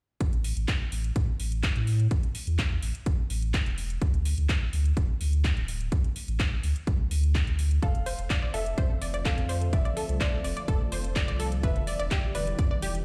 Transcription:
0.21 sub bass A1, kick, closed hi-hat
0.33 closed hi-hat
0.44 open hi-hat
0.57 sub bass A1, closed hi-hat
0.68 kick, clap, closed hi-hat
0.92 sub bass A1, open hi-hat
1.04 closed hi-hat
1.16 sub bass A2, kick, closed hi-hat
1.40 sub bass A1, open hi-hat
1.52 closed hi-hat
1.63 kick, clap, closed hi-hat
1.76 sub bass A2, closed hi-hat
1.87 open hi-hat
2.00 closed hi-hat
2.11 sub bass A1, kick, closed hi-hat
2.23 closed hi-hat
2.35 open hi-hat
2.47 sub bass E2, closed hi-hat
2.59 kick, clap, closed hi-hat
2.82 sub bass A1, open hi-hat
2.95 closed hi-hat
3.06 sub bass A1, kick, closed hi-hat
3.30 sub bass A1, open hi-hat
3.42 closed hi-hat
3.54 kick, clap, closed hi-hat
3.66 sub bass E1, closed hi-hat
3.78 open hi-hat
3.90 closed hi-hat
4.02 sub bass D2, kick, closed hi-hat
4.14 closed hi-hat
4.25 open hi-hat
4.38 sub bass D2, closed hi-hat
4.49 kick, clap, closed hi-hat
4.73 sub bass D2, open hi-hat
4.85 closed hi-hat
4.97 sub bass D1, kick, closed hi-hat
5.21 sub bass D2, open hi-hat
5.33 closed hi-hat
5.44 kick, clap, closed hi-hat
5.57 sub bass D1, closed hi-hat
5.68 open hi-hat
5.81 closed hi-hat
5.92 sub bass D2, kick, closed hi-hat
6.04 closed hi-hat
6.16 open hi-hat
6.28 sub bass A1, closed hi-hat
6.40 kick, clap, closed hi-hat
6.63 sub bass D2, open hi-hat
6.76 closed hi-hat
6.87 sub bass C2, kick, closed hi-hat
7.11 sub bass D2, open hi-hat
7.23 closed hi-hat
7.35 kick, clap, closed hi-hat
7.47 sub bass D2, closed hi-hat
7.59 open hi-hat
7.71 closed hi-hat
7.82 sub bass F1, ambient pad D3 F3 A3 C4 F4, synth pluck A4, grand piano F5, kick, closed hi-hat
7.95 closed hi-hat
8.06 synth pluck C5, open hi-hat
8.19 sub bass F1, closed hi-hat
8.30 synth pluck D5, kick, clap, closed hi-hat
8.42 synth pluck D5
8.54 sub bass F1, synth pluck A4, grand piano E5, open hi-hat
8.66 closed hi-hat
8.78 sub bass F2, synth pluck C5, kick, closed hi-hat
9.02 sub bass F1, synth pluck D5, open hi-hat
9.14 synth pluck D5, closed hi-hat
9.25 synth pluck A4, grand piano F5, kick, clap, closed hi-hat
9.38 sub bass F2, closed hi-hat
9.49 synth pluck C5, open hi-hat
9.62 closed hi-hat
9.73 sub bass F1, synth pluck D5, grand piano E5, kick, closed hi-hat
9.85 synth pluck D5, closed hi-hat
9.97 synth pluck A4, open hi-hat
10.09 sub bass C2, closed hi-hat
10.21 synth pluck C5, grand piano D5, kick, clap, closed hi-hat
10.44 sub bass F1, synth pluck D5, open hi-hat
10.57 synth pluck D5, closed hi-hat
10.68 sub bass F1, synth pluck A4, kick, closed hi-hat
10.92 sub bass F1, synth pluck C5, open hi-hat
11.04 closed hi-hat
11.16 synth pluck D5, kick, clap, closed hi-hat
11.28 sub bass C2, synth pluck D5, closed hi-hat
11.40 synth pluck A4, open hi-hat
11.52 closed hi-hat
11.63 sub bass E1, ambient pad E3 G3 B3 E4, synth pluck B4, grand piano E5, kick, closed hi-hat
11.76 closed hi-hat
11.87 synth pluck D5, open hi-hat
12.00 sub bass E1, synth pluck D5, closed hi-hat
12.11 synth pluck G4, kick, clap, closed hi-hat
12.35 sub bass E1, synth pluck B4, grand piano D5, open hi-hat
12.47 closed hi-hat
12.59 sub bass E2, synth pluck D5, kick, closed hi-hat
12.71 synth pluck D5
12.82 sub bass E1, synth pluck G4, open hi-hat
12.95 closed hi-hat

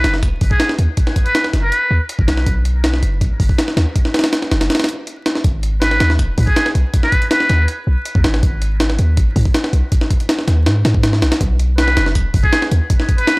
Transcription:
Already playing: muted trumpet B4
0.04 808-style bass F#1, snare, closed hi-hat
0.14 snare
0.23 808-style bass B1, kick, closed hi-hat
0.41 808-style bass F#1, kick, open hi-hat
0.51 muted trumpet G#4, kick
0.60 snare, closed hi-hat
0.69 snare
0.79 808-style bass D#2, closed hi-hat
0.97 kick, closed hi-hat
1.07 snare
1.16 kick, closed hi-hat
1.25 muted trumpet B4, closed hi-hat
1.35 snare, closed hi-hat
1.44 snare
1.53 808-style bass F#1, snare, closed hi-hat
1.63 muted trumpet B4
1.72 closed hi-hat
1.91 808-style bass D#2
2.09 closed hi-hat
2.19 808-style bass F#1, kick
2.28 808-style bass B1, snare, closed hi-hat
2.37 snare
2.46 808-style bass B1, kick, closed hi-hat
2.65 closed hi-hat
2.84 snare, closed hi-hat
2.94 snare
3.02 808-style bass F#1, closed hi-hat
3.21 808-style bass B1, kick, closed hi-hat
3.40 808-style bass F#1, kick, open hi-hat
3.49 kick
3.58 snare, closed hi-hat
3.68 snare
3.77 808-style bass D#2, snare, closed hi-hat
3.96 kick, closed hi-hat
4.05 snare
4.14 snare, closed hi-hat
4.19 snare, closed hi-hat
4.24 snare, closed hi-hat
4.33 snare, closed hi-hat
4.42 snare
4.51 808-style bass F#1, snare, closed hi-hat
4.61 snare, closed hi-hat
4.70 snare, closed hi-hat
4.75 snare, closed hi-hat
4.79 snare, closed hi-hat
4.84 snare, closed hi-hat
4.89 closed hi-hat
5.07 closed hi-hat
5.26 snare, closed hi-hat
5.35 snare
5.44 808-style bass G#1, kick, closed hi-hat
5.63 closed hi-hat
5.82 muted trumpet B4, snare, closed hi-hat
5.91 snare
6.00 808-style bass D#2, snare, closed hi-hat
6.10 snare
6.19 808-style bass G#1, kick, closed hi-hat
6.38 808-style bass G#2, kick, open hi-hat
6.47 muted trumpet G#4, kick
6.56 snare, closed hi-hat
6.66 snare
6.75 808-style bass B1, closed hi-hat
6.94 kick, closed hi-hat
7.03 muted trumpet B4, snare
7.12 kick, closed hi-hat
7.22 closed hi-hat
7.31 muted trumpet B4, snare, closed hi-hat
7.40 snare
7.50 808-style bass D#2, snare, closed hi-hat
7.68 closed hi-hat
7.87 808-style bass B1
8.05 closed hi-hat
8.15 808-style bass D#2, kick
8.24 808-style bass G#1, snare, closed hi-hat
8.34 snare
8.43 808-style bass G#1, kick, closed hi-hat
8.62 closed hi-hat
8.80 snare, closed hi-hat
8.90 snare
8.99 808-style bass D#2, closed hi-hat
9.17 808-style bass G#1, kick, closed hi-hat
9.36 808-style bass G#2, kick, open hi-hat
9.45 kick
9.54 snare, closed hi-hat
9.64 snare
9.73 808-style bass B1, closed hi-hat
9.92 kick, closed hi-hat
10.01 snare
10.10 kick, closed hi-hat
10.20 closed hi-hat
10.29 snare, closed hi-hat
10.39 snare
10.48 808-style bass D#2, snare, closed hi-hat
10.66 808-style bass G#2, snare, closed hi-hat
10.85 808-style bass G#2, snare, closed hi-hat
10.95 kick
11.03 snare, closed hi-hat
11.13 snare
11.22 808-style bass B1, snare, closed hi-hat
11.32 snare, closed hi-hat
11.41 808-style bass B1, kick, closed hi-hat
11.59 closed hi-hat
11.78 muted trumpet B4, snare, closed hi-hat
11.88 snare
11.97 808-style bass F#1, snare, closed hi-hat
12.06 snare
12.15 808-style bass B1, kick, closed hi-hat
12.34 808-style bass F#1, kick, open hi-hat
12.43 muted trumpet G#4, kick
12.53 snare, closed hi-hat
12.62 snare
12.72 808-style bass D#2, closed hi-hat
12.90 kick, closed hi-hat
13.00 snare
13.09 kick, closed hi-hat
13.18 muted trumpet B4, closed hi-hat
13.27 snare, closed hi-hat

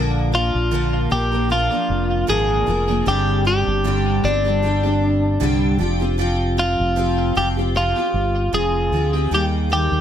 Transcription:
Already playing: fingered electric bass A#1, steel-string acoustic guitar A#2 D3 F3 A#3 D4 A#4
0.32 steel-string acoustic guitar F3 A#3 D4 A#4, clean electric guitar F4
0.55 fingered electric bass A#1
0.71 steel-string acoustic guitar A#2 D3 F3 A#3 D4 A#4
1.10 fingered electric bass A#1, steel-string acoustic guitar F3 A#3 D4 A#4, clean electric guitar G4
1.32 steel-string acoustic guitar F3 A#3 D4 A#4
1.49 steel-string acoustic guitar F3 A#3 D4 A#4, clean electric guitar F4
1.71 steel-string acoustic guitar F3 A#3 D4 A#4
1.90 fingered electric bass F1
2.27 fingered electric bass G#1, steel-string acoustic guitar A#2 D3 F3 A#3 D4 A#4, clean electric guitar G#4
2.66 fingered electric bass F1, steel-string acoustic guitar F3 A#3 D4 A#4
2.88 steel-string acoustic guitar F3 A#3 D4 A#4
3.06 fingered electric bass G1, steel-string acoustic guitar G2 D3 G3 C4 D4 G4
3.45 steel-string acoustic guitar G3 C4 D4 G4
3.67 fingered electric bass G1
3.84 steel-string acoustic guitar G2 D3 G3 C4 D4 G4
4.24 fingered electric bass G1, steel-string acoustic guitar G3 C4 D4 G4
4.45 steel-string acoustic guitar G3 C4 D4 G4
4.62 steel-string acoustic guitar G3 C4 D4 G4
4.83 steel-string acoustic guitar G3 C4 D4 G4
5.40 fingered electric bass C2, steel-string acoustic guitar G2 D3 G3 C4 D4 G4
5.79 fingered electric bass F1, steel-string acoustic guitar F3 C4 F4 G4
6.00 steel-string acoustic guitar C4 F4 G4
6.18 steel-string acoustic guitar F3 C4 F4 G4
6.57 steel-string acoustic guitar F3 C4 F4 G4
6.80 fingered electric bass F1
6.96 steel-string acoustic guitar F3 C4 F4 G4
7.35 fingered electric bass F1, steel-string acoustic guitar F3 C4 F4 G4
7.57 steel-string acoustic guitar C4 F4 G4
7.75 steel-string acoustic guitar F3 C4 F4 G4
7.96 steel-string acoustic guitar C4 F4 G4
8.14 fingered electric bass G1
8.53 fingered electric bass F1, steel-string acoustic guitar F3 C4 F4, clean electric guitar G#4
8.92 fingered electric bass D2, steel-string acoustic guitar F3 C4 F4 G4
9.13 steel-string acoustic guitar C4 F4 G4
9.31 fingered electric bass D#2, steel-string acoustic guitar D#3 G3 A#3 D#4 G4
9.70 steel-string acoustic guitar G3 A#3 D#4 G4
9.92 fingered electric bass D#2

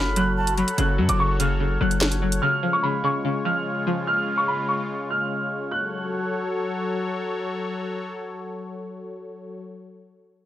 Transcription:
Already playing: 808-style bass F#1, synth pluck C#3 F#3, analog synth pad F#3 F#4 A4 C#5, flute B5, grand piano F6
0.16 synth pluck F#3, grand piano F#6, closed hi-hat
0.37 flute A5
0.47 closed hi-hat
0.58 synth pluck F#3, flute B5, closed hi-hat
0.68 closed hi-hat
0.78 808-style bass F#1, synth pluck C#3, grand piano F#6, closed hi-hat
0.98 808-style bass F#2, synth pluck F#3
1.09 808-style bass F#1, grand piano D6, closed hi-hat
1.19 synth pluck C#3, grand piano C#6
1.40 synth pluck C#3, grand piano F6, closed hi-hat
1.60 synth pluck C#3
1.81 808-style bass F#1, synth pluck F#3, grand piano F#6
1.91 closed hi-hat
2.01 finger snap, snare
2.12 closed hi-hat
2.22 synth pluck F#3
2.32 closed hi-hat
2.42 synth pluck C#3, analog synth pad C#3 G#3 F4, grand piano F6
2.63 synth pluck F3
2.73 grand piano C#6
2.83 synth pluck C#3, grand piano B5
3.04 synth pluck C#3, grand piano C#6
3.25 synth pluck C#3
3.45 synth pluck F3, grand piano F6
3.87 synth pluck F3
4.07 grand piano F6
4.38 grand piano C#6
4.48 grand piano B5
4.69 grand piano C#6
5.11 grand piano F6
5.71 analog synth pad F#3 F#4 A4 C#5, grand piano F#6

